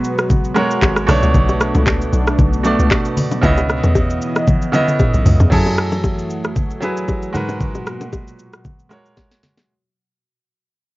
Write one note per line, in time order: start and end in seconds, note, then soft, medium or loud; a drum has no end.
0.00 1.06 B2 medium
0.00 1.04 F#3 medium
0.00 0.55 G#3 medium
0.00 1.06 B3 medium
0.00 0.56 F#4 medium
0.00 1.04 F#4 medium
0.00 0.57 A#4 medium
0.00 1.10 B4 loud
0.04 shaker medium
0.18 cross-stick loud
0.18 shaker soft
0.30 kick loud
0.30 low conga medium
0.30 shaker medium
0.44 shaker soft
0.55 1.08 G#3 medium
0.55 1.08 F#4 medium
0.55 1.09 A#4 medium
0.55 1.09 C#5 medium
0.55 cross-stick loud
0.55 low bongo medium
0.55 shaker loud
0.71 shaker medium
0.82 1.07 G#1 loud
0.82 kick loud
0.82 clap medium
0.82 high bongo medium
0.82 shaker medium
0.96 cross-stick medium
0.96 shaker medium
1.07 1.22 B1 loud
1.07 1.92 B2 loud
1.07 5.48 B2 medium
1.07 1.92 A3 medium
1.07 3.41 A3 medium
1.07 5.48 B3 medium
1.07 3.41 D4 medium
1.07 1.93 D4 medium
1.07 1.93 C#5 loud
1.07 cross-stick loud
1.07 open hi-hat medium
1.07 low conga medium
1.07 shaker loud
1.23 1.34 C#2 loud
1.23 low bongo medium
1.23 shaker medium
1.34 1.72 B1 loud
1.34 kick loud
1.34 low conga medium
1.34 shaker medium
1.49 high bongo medium
1.49 shaker medium
1.61 cross-stick loud
1.61 shaker loud
1.75 2.10 C#2 medium
1.75 low bongo medium
1.75 shaker soft
1.87 kick medium
1.87 clap medium
1.87 high bongo medium
1.87 shaker medium
2.02 shaker medium
2.13 2.37 B1 loud
2.13 shaker medium
2.27 cross-stick loud
2.27 shaker soft
2.39 2.77 B1 loud
2.39 kick loud
2.39 low conga medium
2.39 shaker medium
2.53 shaker soft
2.63 3.28 B2 medium
2.63 3.28 A3 medium
2.63 3.29 D4 medium
2.63 3.29 D5 medium
2.63 low bongo medium
2.63 shaker loud
2.79 2.90 C#2 medium
2.79 shaker medium
2.91 kick loud
2.91 clap medium
2.91 high bongo medium
2.91 shaker medium
3.05 shaker medium
3.17 open hi-hat medium
3.17 low conga medium
3.17 shaker loud
3.31 low bongo medium
3.31 shaker medium
3.41 3.81 C#2 loud
3.41 4.26 C#3 medium
3.41 5.50 E3 medium
3.41 4.27 B3 medium
3.41 4.27 E4 medium
3.41 5.50 D#5 medium
3.41 4.28 D#5 loud
3.41 kick loud
3.41 low conga medium
3.41 shaker medium
3.57 high bongo medium
3.57 shaker medium
3.69 cross-stick loud
3.69 shaker loud
3.83 4.19 E2 medium
3.83 low bongo medium
3.83 shaker medium
3.95 kick medium
3.95 high bongo medium
3.95 shaker medium
4.10 shaker medium
4.21 shaker medium
4.36 cross-stick medium
4.36 shaker soft
4.47 kick loud
4.47 high tom medium
4.47 low conga medium
4.47 shaker medium
4.62 shaker medium
4.72 5.36 C#3 medium
4.72 5.37 B3 medium
4.72 5.38 E4 medium
4.72 5.38 D#5 loud
4.72 mid tom medium
4.72 low bongo medium
4.72 shaker loud
4.88 mid tom medium
4.88 shaker medium
4.99 kick loud
4.99 mid tom medium
4.99 high bongo medium
4.99 shaker medium
5.14 5.25 B1 medium
5.14 shaker medium
5.26 5.39 C#2 loud
5.26 floor tom loud
5.26 open hi-hat medium
5.26 low conga medium
5.26 shaker loud
5.40 5.51 E2 medium
5.40 floor tom loud
5.40 low bongo medium
5.40 shaker medium
5.50 7.31 F#2 medium
5.50 7.33 E3 medium
5.50 6.35 F#3 medium
5.50 9.65 F#3 medium
5.50 7.33 A3 medium
5.50 6.36 E4 medium
5.50 9.65 F#4 medium
5.50 6.36 G#4 medium
5.50 6.37 A4 medium
5.50 kick loud
5.50 crash medium
5.50 low conga medium
5.50 shaker medium
5.66 high bongo medium
5.66 shaker medium
5.78 cross-stick loud
5.78 shaker medium
5.92 low bongo medium
5.92 shaker soft
6.04 kick medium
6.04 high bongo medium
6.04 shaker medium
6.19 shaker medium
6.30 shaker medium
6.44 cross-stick medium
6.44 shaker soft
6.56 kick loud
6.56 low conga medium
6.56 shaker medium
6.70 shaker soft
6.81 7.34 F#3 medium
6.81 7.34 E4 medium
6.81 7.35 G#4 medium
6.81 7.35 B4 medium
6.81 low bongo medium
6.81 shaker medium
6.97 shaker medium
7.08 kick loud
7.08 high bongo medium
7.08 shaker medium
7.22 shaker medium
7.33 9.39 G#2 medium
7.33 9.67 A#2 medium
7.33 9.67 B2 medium
7.33 8.18 G#3 medium
7.33 8.18 F#4 medium
7.33 8.19 A#4 medium
7.33 8.19 B4 loud
7.33 low conga medium
7.33 shaker medium
7.49 high bongo medium
7.49 low bongo medium
7.49 shaker medium
7.60 kick loud
7.60 low conga medium
7.60 shaker medium
7.75 high bongo medium
7.75 shaker medium
7.87 cross-stick loud
7.87 shaker medium
8.01 low bongo medium
8.01 shaker soft
8.13 kick medium
8.13 high bongo medium
8.13 shaker medium
8.27 shaker medium
8.39 shaker medium
8.53 cross-stick medium
8.53 shaker soft
8.65 kick loud
8.65 low conga medium
8.65 shaker medium
8.79 shaker soft
8.89 9.54 G#3 medium
8.89 9.54 F#4 medium
8.89 9.55 A#4 medium
8.89 9.56 C#5 medium
8.89 cross-stick medium
8.89 low bongo medium
8.89 shaker medium
9.06 shaker medium
9.17 kick medium
9.17 snare medium
9.17 high bongo medium
9.17 shaker medium
9.31 snare medium
9.31 shaker medium
9.43 snare medium
9.43 low conga medium
9.43 shaker medium
9.57 snare medium
9.57 high bongo medium
9.57 low bongo medium
9.57 shaker medium